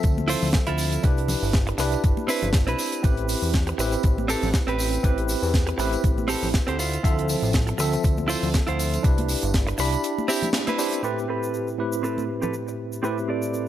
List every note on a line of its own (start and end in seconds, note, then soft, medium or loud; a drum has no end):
0.00 0.36 D2 medium
0.00 1.01 F3 medium
0.00 1.01 C4 medium
0.00 1.02 A4 medium
0.00 1.01 E5 medium
0.00 kick loud
0.00 closed hi-hat medium
0.04 tambourine soft
0.04 shaker medium
0.18 high conga medium
0.18 shaker soft
0.28 0.48 E4 loud
0.28 0.48 F4 loud
0.28 0.49 C5 loud
0.28 open hi-hat loud
0.28 tambourine medium
0.28 shaker medium
0.42 0.59 D2 medium
0.42 tambourine soft
0.42 low conga medium
0.42 shaker soft
0.53 kick loud
0.53 snare loud
0.53 closed hi-hat medium
0.53 tambourine soft
0.53 shaker medium
0.67 0.98 D2 medium
0.67 1.04 E4 medium
0.67 1.04 F4 medium
0.67 1.05 A4 medium
0.67 closed hi-hat medium
0.67 shaker soft
0.78 open hi-hat loud
0.78 tambourine medium
0.78 shaker medium
0.92 closed hi-hat medium
0.92 tambourine soft
0.92 shaker soft
1.03 1.36 C2 loud
1.03 1.76 D4 medium
1.03 1.76 E4 medium
1.03 1.76 G4 medium
1.03 1.77 B4 loud
1.03 kick loud
1.03 closed hi-hat medium
1.03 tambourine soft
1.03 shaker soft
1.17 closed hi-hat soft
1.17 shaker soft
1.28 open hi-hat loud
1.28 tambourine medium
1.28 low conga medium
1.28 shaker medium
1.42 1.73 G1 loud
1.42 tambourine soft
1.42 shaker soft
1.53 kick loud
1.53 snare loud
1.53 closed hi-hat medium
1.53 shaker medium
1.67 muted clean electric guitar stroke medium
1.67 closed hi-hat soft
1.67 shaker soft
1.78 1.97 C2 loud
1.78 3.01 D4 medium
1.78 3.01 E4 medium
1.78 3.01 G4 medium
1.78 3.02 B4 medium
1.78 muted clean electric guitar stroke loud
1.78 snare soft
1.78 open hi-hat loud
1.78 tambourine medium
1.78 shaker medium
1.92 muted clean electric guitar stroke soft
1.92 closed hi-hat medium
1.92 tambourine soft
1.92 shaker soft
2.04 2.13 G1 medium
2.04 kick loud
2.04 closed hi-hat medium
2.04 tambourine soft
2.04 shaker soft
2.17 high conga medium
2.17 shaker soft
2.28 2.48 C4 loud
2.28 2.48 E4 loud
2.28 2.49 B4 loud
2.28 open hi-hat loud
2.28 tambourine medium
2.28 shaker medium
2.42 2.69 G1 loud
2.42 closed hi-hat soft
2.42 tambourine soft
2.42 low conga medium
2.42 shaker soft
2.53 kick loud
2.53 snare loud
2.53 closed hi-hat medium
2.53 tambourine soft
2.53 shaker medium
2.67 2.75 C2 medium
2.67 3.03 C4 medium
2.67 3.04 E4 medium
2.67 3.04 B4 loud
2.67 closed hi-hat medium
2.67 shaker soft
2.79 open hi-hat loud
2.79 tambourine medium
2.79 shaker medium
2.92 closed hi-hat medium
2.92 tambourine soft
2.92 shaker soft
3.03 3.36 A1 medium
3.03 3.76 C4 medium
3.03 3.76 E4 medium
3.03 3.76 G4 medium
3.03 3.77 B4 loud
3.03 kick loud
3.03 closed hi-hat medium
3.03 tambourine soft
3.03 shaker soft
3.17 closed hi-hat medium
3.17 shaker soft
3.29 open hi-hat loud
3.29 tambourine medium
3.29 shaker medium
3.42 3.73 E2 loud
3.42 tambourine soft
3.42 shaker soft
3.53 kick loud
3.53 snare loud
3.53 closed hi-hat medium
3.53 tambourine soft
3.53 shaker soft
3.67 muted clean electric guitar stroke medium
3.67 closed hi-hat medium
3.67 shaker soft
3.78 3.97 A1 loud
3.78 5.01 C4 medium
3.78 5.01 E4 medium
3.78 5.02 G4 medium
3.78 5.02 B4 medium
3.78 muted clean electric guitar stroke loud
3.78 open hi-hat loud
3.78 tambourine medium
3.78 shaker medium
3.92 muted clean electric guitar stroke soft
3.92 closed hi-hat soft
3.92 tambourine soft
3.92 shaker soft
4.03 4.36 A1 medium
4.03 kick loud
4.03 closed hi-hat medium
4.03 shaker soft
4.18 high conga medium
4.18 shaker soft
4.28 4.48 C4 loud
4.28 4.49 G4 loud
4.28 4.49 A4 loud
4.28 open hi-hat loud
4.28 tambourine medium
4.28 shaker medium
4.43 4.59 A1 medium
4.43 tambourine soft
4.43 low conga medium
4.43 shaker soft
4.54 kick loud
4.54 snare loud
4.54 closed hi-hat medium
4.54 shaker soft
4.67 4.98 A1 medium
4.67 5.17 C4 medium
4.67 5.18 G4 medium
4.67 5.18 B4 loud
4.67 closed hi-hat medium
4.67 shaker soft
4.79 open hi-hat loud
4.79 tambourine medium
4.79 shaker medium
4.93 closed hi-hat medium
4.93 tambourine soft
4.93 shaker soft
5.03 5.36 A1 loud
5.03 5.76 C4 medium
5.03 5.76 E4 medium
5.03 5.76 G4 medium
5.03 5.77 B4 loud
5.03 kick loud
5.03 closed hi-hat medium
5.03 shaker medium
5.18 closed hi-hat medium
5.18 shaker soft
5.28 open hi-hat loud
5.28 tambourine medium
5.28 shaker medium
5.43 5.73 E2 loud
5.43 tambourine soft
5.43 shaker soft
5.54 kick loud
5.54 snare loud
5.54 closed hi-hat medium
5.54 shaker soft
5.67 muted clean electric guitar stroke medium
5.67 closed hi-hat medium
5.67 shaker soft
5.78 5.97 A1 loud
5.78 6.77 C4 medium
5.78 6.77 E4 medium
5.78 6.78 G4 medium
5.78 6.78 B4 loud
5.78 muted clean electric guitar stroke loud
5.78 open hi-hat loud
5.78 tambourine medium
5.78 shaker medium
5.92 muted clean electric guitar stroke soft
5.92 closed hi-hat soft
5.92 tambourine soft
5.92 shaker soft
6.04 6.36 A1 medium
6.04 kick loud
6.04 closed hi-hat medium
6.04 shaker medium
6.18 high conga medium
6.18 shaker soft
6.28 6.48 C4 loud
6.28 6.48 G4 loud
6.28 6.49 A4 loud
6.28 open hi-hat loud
6.28 tambourine medium
6.28 shaker medium
6.42 6.59 A1 medium
6.42 tambourine soft
6.42 low conga medium
6.42 shaker soft
6.54 kick loud
6.54 snare loud
6.54 closed hi-hat medium
6.54 shaker medium
6.67 6.98 D2 medium
6.67 6.78 C4 medium
6.67 6.79 G4 medium
6.67 6.79 C5 medium
6.67 closed hi-hat medium
6.67 shaker soft
6.78 7.49 E4 medium
6.78 7.50 F4 medium
6.78 7.50 C5 loud
6.78 open hi-hat loud
6.78 tambourine medium
6.78 shaker medium
6.93 closed hi-hat medium
6.93 tambourine soft
6.93 shaker soft
7.03 7.36 D2 medium
7.03 7.77 F3 medium
7.03 7.76 C4 medium
7.03 7.77 A4 loud
7.03 7.76 E5 medium
7.03 kick loud
7.03 closed hi-hat medium
7.03 tambourine soft
7.03 shaker medium
7.18 closed hi-hat medium
7.18 shaker soft
7.29 open hi-hat medium
7.29 tambourine medium
7.29 shaker medium
7.42 7.73 A1 loud
7.42 tambourine soft
7.42 shaker soft
7.53 kick loud
7.53 snare loud
7.53 closed hi-hat loud
7.53 shaker soft
7.67 muted clean electric guitar stroke medium
7.67 closed hi-hat medium
7.67 shaker soft
7.78 7.97 D2 loud
7.78 9.02 F3 medium
7.78 9.01 C4 medium
7.78 9.02 A4 loud
7.78 9.01 E5 medium
7.78 muted clean electric guitar stroke loud
7.78 open hi-hat loud
7.78 tambourine medium
7.78 shaker medium
7.92 muted clean electric guitar stroke soft
7.92 closed hi-hat soft
7.92 tambourine soft
7.92 shaker soft
8.03 8.36 D2 medium
8.03 kick loud
8.03 closed hi-hat medium
8.03 tambourine soft
8.03 shaker medium
8.17 high conga medium
8.17 shaker soft
8.28 8.48 E4 loud
8.28 8.48 F4 loud
8.28 8.49 C5 loud
8.28 open hi-hat loud
8.28 tambourine medium
8.28 shaker medium
8.43 8.59 D2 medium
8.43 tambourine soft
8.43 low conga medium
8.43 shaker soft
8.54 kick loud
8.54 snare loud
8.54 closed hi-hat medium
8.54 tambourine soft
8.54 shaker medium
8.67 8.98 D2 medium
8.67 9.03 E4 medium
8.67 9.04 F4 medium
8.67 9.04 C5 medium
8.67 closed hi-hat medium
8.67 shaker soft
8.79 open hi-hat loud
8.79 tambourine medium
8.79 shaker medium
8.93 closed hi-hat medium
8.93 tambourine soft
8.93 shaker soft
9.03 9.36 C2 loud
9.03 9.76 D4 medium
9.03 9.76 E4 medium
9.03 9.76 G4 medium
9.03 9.77 B4 loud
9.03 kick loud
9.03 closed hi-hat medium
9.03 tambourine soft
9.03 shaker medium
9.18 closed hi-hat medium
9.18 high conga medium
9.18 shaker soft
9.28 open hi-hat loud
9.28 tambourine medium
9.28 shaker medium
9.42 9.73 G1 loud
9.42 closed hi-hat medium
9.42 tambourine soft
9.42 shaker soft
9.53 kick loud
9.53 snare loud
9.53 closed hi-hat loud
9.53 tambourine soft
9.53 shaker medium
9.67 muted clean electric guitar stroke medium
9.67 closed hi-hat soft
9.67 shaker soft
9.78 9.97 C2 loud
9.78 10.76 D4 medium
9.78 10.77 E4 medium
9.78 10.77 G4 medium
9.78 10.77 B5 medium
9.78 muted clean electric guitar stroke loud
9.78 open hi-hat loud
9.78 tambourine medium
9.78 shaker medium
9.92 muted clean electric guitar stroke soft
9.92 closed hi-hat medium
9.92 tambourine soft
9.92 shaker soft
10.04 closed hi-hat medium
10.04 tambourine soft
10.04 shaker medium
10.18 high conga medium
10.18 shaker soft
10.28 10.48 C4 loud
10.28 10.48 E4 loud
10.28 10.49 G4 loud
10.28 open hi-hat loud
10.28 tambourine medium
10.28 shaker medium
10.42 closed hi-hat medium
10.42 tambourine soft
10.42 high conga medium
10.42 low conga medium
10.42 shaker soft
10.53 snare loud
10.53 closed hi-hat medium
10.53 tambourine soft
10.53 shaker medium
10.67 11.02 C4 medium
10.67 11.04 E4 medium
10.67 11.04 B4 loud
10.67 closed hi-hat medium
10.67 high conga medium
10.67 shaker soft
10.78 11.01 D4 medium
10.78 11.01 E4 medium
10.78 11.01 G4 medium
10.78 11.01 C5 medium
10.78 open hi-hat loud
10.78 tambourine medium
10.78 shaker loud
10.92 closed hi-hat medium
10.92 tambourine soft
10.92 shaker soft
11.03 11.76 A2 medium
11.03 11.17 C4 loud
11.03 11.76 C4 medium
11.03 11.76 E4 medium
11.03 11.18 G4 medium
11.03 11.76 G4 medium
11.03 11.18 A4 medium
11.03 11.77 B4 medium
11.03 11.18 B4 loud
11.03 shaker medium
11.19 shaker soft
11.28 11.67 C4 medium
11.28 11.68 G4 medium
11.28 11.68 A4 medium
11.28 11.68 B4 medium
11.43 shaker medium
11.54 shaker medium
11.67 shaker soft
11.78 13.01 A2 medium
11.78 13.01 C4 medium
11.78 13.01 E4 medium
11.78 13.01 G4 medium
11.78 13.02 B4 medium
11.92 shaker medium
12.03 12.23 C4 medium
12.03 12.23 G4 medium
12.03 12.24 A4 medium
12.03 12.24 B4 medium
12.03 shaker medium
12.18 high conga medium
12.18 shaker soft
12.42 12.53 C4 medium
12.42 12.54 G4 medium
12.42 12.54 A4 medium
12.42 12.54 B4 medium
12.42 low conga medium
12.42 shaker medium
12.54 shaker medium
12.67 muted clean electric guitar stroke soft
12.67 shaker soft
12.92 shaker medium
13.03 13.68 A2 medium
13.03 13.17 C4 loud
13.03 13.68 C4 medium
13.03 13.68 E4 medium
13.03 13.17 G4 medium
13.03 13.68 G4 medium
13.03 13.18 A4 medium
13.03 13.18 B4 loud
13.03 13.68 B4 medium
13.03 shaker medium
13.18 shaker soft
13.28 13.67 C4 medium
13.28 13.68 G4 medium
13.28 13.68 A4 medium
13.28 13.68 D5 medium
13.42 shaker medium
13.54 shaker medium